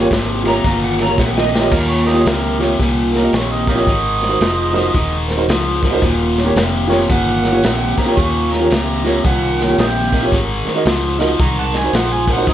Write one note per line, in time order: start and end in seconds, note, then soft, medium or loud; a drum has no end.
0.00 0.10 F4 medium
0.00 0.10 G4 medium
0.00 0.11 A#4 medium
0.00 0.11 C#5 medium
0.11 0.63 G#1 medium
0.11 0.41 D#2 medium
0.11 0.42 C3 medium
0.11 kick medium
0.11 snare loud
0.11 ride medium
0.44 0.63 D#2 medium
0.44 0.63 C3 medium
0.44 0.54 F4 medium
0.44 0.54 G4 medium
0.44 0.55 A#4 medium
0.44 0.55 C#5 medium
0.44 snare soft
0.44 ride medium
0.48 0.82 A#5 medium
0.64 1.16 G1 medium
0.64 1.14 D#2 medium
0.64 1.15 A#2 medium
0.64 kick medium
0.64 snare soft
0.64 ride medium
0.84 1.01 F#5 medium
0.97 1.03 A#4 soft
0.97 1.03 C#5 soft
0.97 snare soft
0.97 ride medium
1.02 1.19 A#5 medium
1.07 1.17 F4 medium
1.07 1.18 G4 soft
1.07 1.18 A#4 medium
1.07 1.18 C#5 medium
1.18 1.70 A#1 medium
1.18 1.49 D#2 medium
1.18 1.49 C3 medium
1.18 1.36 F#5 medium
1.18 kick medium
1.18 snare medium
1.37 1.71 D#5 medium
1.37 snare medium
1.50 1.70 D#2 medium
1.50 1.70 C3 medium
1.50 1.56 A#4 soft
1.50 1.57 C#5 soft
1.55 snare medium
1.60 1.71 F4 medium
1.60 1.71 G4 medium
1.60 1.72 A#4 medium
1.60 1.72 C#5 medium
1.71 2.21 D#2 medium
1.71 2.24 D#2 medium
1.71 2.22 A#2 medium
1.71 1.91 A#4 medium
1.71 kick loud
1.71 snare soft
1.71 crash loud
1.89 2.06 C#5 medium
2.04 2.14 G4 medium
2.04 2.10 A#4 soft
2.04 2.15 A#4 medium
2.04 2.11 C#5 soft
2.04 2.28 D#5 medium
2.04 snare soft
2.04 closed hi-hat medium
2.14 2.25 F4 medium
2.14 2.25 G4 medium
2.14 2.25 A#4 medium
2.14 2.26 C#5 medium
2.25 2.78 C#2 medium
2.25 2.57 D#2 medium
2.25 2.57 C3 medium
2.25 2.60 A#4 medium
2.25 snare loud
2.25 closed hi-hat medium
2.59 2.77 D#2 medium
2.59 2.78 C3 medium
2.59 2.69 F4 medium
2.59 2.70 G4 medium
2.59 2.70 A#4 medium
2.59 2.70 C#5 medium
2.59 snare soft
2.59 closed hi-hat medium
2.80 3.32 C2 medium
2.80 3.29 D#2 medium
2.80 3.30 A#2 medium
2.80 kick loud
2.80 snare soft
2.80 closed hi-hat medium
3.12 3.18 A#4 soft
3.12 3.19 C#5 soft
3.12 snare soft
3.12 closed hi-hat medium
3.18 3.32 F4 medium
3.18 3.37 A#4 medium
3.22 3.33 G4 medium
3.22 3.33 A#4 medium
3.22 3.33 D#5 medium
3.33 3.85 A#1 medium
3.33 3.64 D#2 medium
3.33 3.64 C3 medium
3.33 3.53 C#5 medium
3.33 snare loud
3.33 closed hi-hat medium
3.51 3.69 D#5 medium
3.66 3.85 D#2 medium
3.66 3.86 C3 medium
3.66 3.78 G4 medium
3.66 3.71 A#4 soft
3.66 3.76 A#4 medium
3.66 3.72 C#5 soft
3.66 5.27 D#5 loud
3.66 kick medium
3.66 snare soft
3.66 closed hi-hat medium
3.75 3.86 F4 medium
3.75 3.86 G4 medium
3.75 3.87 A#4 medium
3.75 3.87 C#5 medium
3.87 4.39 G#1 medium
3.87 4.37 G#2 medium
3.87 4.37 D#3 medium
3.87 kick loud
3.87 closed hi-hat medium
4.18 4.25 A#4 soft
4.18 4.26 C5 soft
4.18 closed hi-hat medium
4.23 snare soft
4.29 4.40 D#4 medium
4.29 4.40 F#4 medium
4.29 4.40 A#4 medium
4.29 4.40 C5 medium
4.41 4.93 F1 medium
4.41 4.72 G#2 medium
4.41 4.72 F3 loud
4.41 snare loud
4.41 closed hi-hat medium
4.73 4.93 G#2 medium
4.73 4.93 F3 medium
4.73 4.84 D#4 medium
4.73 4.84 F#4 medium
4.73 4.84 A#4 medium
4.73 4.84 C5 loud
4.73 snare soft
4.73 closed hi-hat medium
4.94 5.47 D#1 medium
4.94 5.45 G#2 medium
4.94 5.45 D#3 medium
4.94 kick loud
4.94 closed hi-hat loud
5.27 5.33 A#4 medium
5.27 5.34 C5 medium
5.27 snare soft
5.27 closed hi-hat medium
5.37 5.48 D#4 medium
5.37 5.48 F#4 medium
5.37 5.48 A#4 medium
5.37 5.48 C5 medium
5.48 6.00 C#2 medium
5.48 5.80 G#2 medium
5.48 5.80 F3 medium
5.48 snare loud
5.48 closed hi-hat medium
5.81 6.01 G#2 medium
5.81 6.01 F3 medium
5.81 5.87 A#4 soft
5.81 5.88 C5 medium
5.81 kick medium
5.81 snare soft
5.81 closed hi-hat medium
5.91 6.01 D#4 medium
5.91 6.02 F#4 medium
5.91 6.02 A#4 medium
5.91 6.02 C5 medium
6.02 6.54 D#1 medium
6.02 6.53 D#2 medium
6.02 6.53 A#2 loud
6.02 kick loud
6.02 closed hi-hat medium
6.35 6.41 A#4 soft
6.35 6.41 C#5 medium
6.35 snare soft
6.35 closed hi-hat medium
6.44 6.55 F4 medium
6.44 6.56 G4 medium
6.44 6.56 A#4 medium
6.44 6.56 C#5 medium
6.56 7.08 F1 medium
6.56 6.87 D#2 medium
6.56 6.87 C3 medium
6.56 snare loud
6.56 closed hi-hat medium
6.88 7.08 D#2 medium
6.88 7.08 C3 medium
6.88 6.99 F4 medium
6.88 6.99 G4 medium
6.88 6.99 A#4 medium
6.88 7.00 C#5 medium
6.88 closed hi-hat medium
6.92 snare soft
7.09 7.62 G1 medium
7.09 7.59 D#2 medium
7.09 7.60 A#2 medium
7.09 7.95 F#5 medium
7.09 kick loud
7.09 closed hi-hat medium
7.42 7.48 A#4 soft
7.42 7.49 C#5 soft
7.42 snare soft
7.42 closed hi-hat medium
7.52 7.63 F4 medium
7.52 7.63 G4 medium
7.52 7.63 A#4 medium
7.52 7.63 C#5 medium
7.63 7.95 A#1 medium
7.63 7.94 D#2 medium
7.63 7.94 C3 medium
7.63 snare loud
7.63 closed hi-hat medium
7.96 8.15 D#2 medium
7.96 8.15 C3 medium
7.96 8.02 A#4 soft
7.96 8.02 C5 soft
7.96 8.19 A#5 medium
7.96 muted fingered electric bass stroke soft
7.96 kick medium
7.96 snare soft
7.96 closed hi-hat medium
8.06 8.17 F4 medium
8.06 8.17 G4 medium
8.06 8.17 A#4 medium
8.06 8.18 C#5 medium
8.16 8.67 D#2 medium
8.16 8.69 D#2 medium
8.16 8.67 A#2 medium
8.16 8.55 C#6 medium
8.16 kick loud
8.16 snare soft
8.16 closed hi-hat medium
8.50 8.56 A#4 soft
8.50 8.56 C#5 soft
8.50 9.23 A#5 medium
8.50 snare soft
8.50 closed hi-hat medium
8.60 8.70 F4 medium
8.60 8.71 G4 medium
8.60 8.71 A#4 medium
8.60 8.71 C#5 medium
8.70 9.23 C#2 medium
8.70 9.01 D#2 medium
8.70 9.01 C3 medium
8.70 snare loud
8.70 closed hi-hat medium
9.04 9.22 D#2 medium
9.04 9.22 C3 medium
9.04 9.14 F4 medium
9.04 9.15 G4 medium
9.04 9.15 A#4 medium
9.04 9.15 C#5 medium
9.04 snare soft
9.04 closed hi-hat medium
9.24 9.77 C2 medium
9.24 9.74 D#2 medium
9.24 9.75 A#2 medium
9.24 9.77 F#5 medium
9.24 kick loud
9.24 closed hi-hat medium
9.58 9.63 A#4 soft
9.58 9.64 C#5 soft
9.58 snare soft
9.58 closed hi-hat medium
9.68 9.78 F4 medium
9.68 9.78 G4 medium
9.68 9.79 A#4 medium
9.68 9.79 C#5 medium
9.78 10.30 A#1 medium
9.78 10.09 D#2 medium
9.78 10.09 C3 medium
9.78 9.87 D#5 medium
9.78 10.31 G5 loud
9.78 snare loud
9.78 closed hi-hat medium
10.12 10.30 D#2 medium
10.12 10.30 C3 medium
10.12 10.17 A#4 soft
10.12 10.18 D#5 soft
10.12 kick medium
10.12 snare soft
10.12 closed hi-hat medium
10.22 10.32 F4 medium
10.22 10.33 G4 medium
10.22 10.33 A#4 medium
10.22 10.33 C#5 medium
10.32 10.64 G#1 medium
10.32 10.82 G#2 medium
10.32 10.82 D#3 medium
10.32 kick loud
10.32 snare soft
10.32 closed hi-hat medium
10.65 10.71 A#4 soft
10.65 10.72 C5 medium
10.65 muted fingered electric bass stroke soft
10.65 snare soft
10.65 closed hi-hat medium
10.75 10.85 D#4 medium
10.75 10.86 F#4 medium
10.75 10.86 A#4 medium
10.75 10.86 D#5 medium
10.85 11.38 C#2 medium
10.85 11.16 G#2 medium
10.85 11.17 F3 medium
10.85 snare loud
10.85 closed hi-hat medium
11.19 11.38 G#2 medium
11.19 11.38 F3 medium
11.19 11.29 D#4 medium
11.19 11.29 F#4 medium
11.19 11.30 A#4 medium
11.19 11.30 D#5 medium
11.19 snare soft
11.19 closed hi-hat medium
11.39 11.92 C2 medium
11.39 11.89 G#2 medium
11.39 11.90 D#3 medium
11.39 11.57 A#5 medium
11.39 kick loud
11.39 closed hi-hat medium
11.59 11.65 F#5 medium
11.59 11.79 A5 medium
11.72 11.78 A#4 soft
11.72 11.79 D#5 soft
11.72 snare soft
11.72 closed hi-hat medium
11.78 11.94 G#5 medium
11.83 11.93 D#4 medium
11.83 11.94 F#4 medium
11.83 11.94 A#4 medium
11.83 11.94 C5 medium
11.93 12.45 A#1 medium
11.93 12.24 G#2 medium
11.93 12.24 F3 medium
11.93 12.14 F#5 medium
11.93 snare loud
11.93 closed hi-hat medium
12.12 12.29 G#5 medium
12.27 12.45 G#2 medium
12.27 12.45 F3 medium
12.27 12.32 A#4 soft
12.27 12.33 C5 soft
12.27 kick medium
12.27 snare soft
12.27 closed hi-hat medium
12.32 12.46 D#4 medium
12.32 12.48 F#5 medium
12.37 12.47 F#4 medium
12.37 12.47 A#4 medium
12.37 12.48 C5 medium
12.47 12.54 G#1 medium
12.47 12.54 G#2 medium
12.47 12.54 D#3 medium
12.47 12.54 D#5 medium
12.47 kick loud
12.47 snare soft
12.47 closed hi-hat medium